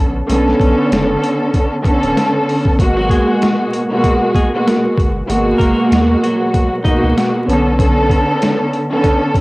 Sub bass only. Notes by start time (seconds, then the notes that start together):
Already playing: A#1
0.29 B1
0.60 B1
0.91 F#1
2.03 D1
2.79 G#1
4.97 G1
5.29 G#1
5.60 F#1
5.91 D#2
7.03 C#2
7.48 B1